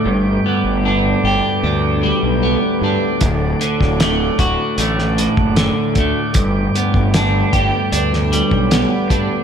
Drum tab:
HH |----------------|x-x-x-x-x-x-x-x-|x-x-x-x-x-x-x-x-|
SD |----------------|---oo----o--o---|----o----o--o---|
BD |----------------|o--o--o----o--o-|o--o--o----o--o-|